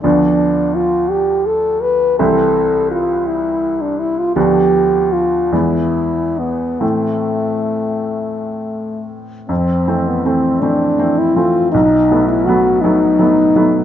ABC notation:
X:1
M:6/8
L:1/16
Q:3/8=54
K:Am
V:1 name="French horn"
D4 F2 G2 A2 B2 | A4 F2 E3 D E F | G4 F2 E4 B,2 | A,8- A,2 z2 |
C3 B, C2 D3 E F2 | ^D3 E ^F2 D6 |]
V:2 name="Grand piano"
[D,,F,B,D]12 | [C,,E,CE]12 | [D,,F,B,D]6 [E,,E,^G,B,]6 | [A,,E,A,C]12 |
F,,2 [E,A,C]2 [E,A,C]2 [E,A,C]2 [E,A,C]2 [E,A,C]2 | B,,,2 [^F,A,B,]2 [F,A,B,]2 [F,A,B,]2 [F,A,B,]2 [F,A,B,]2 |]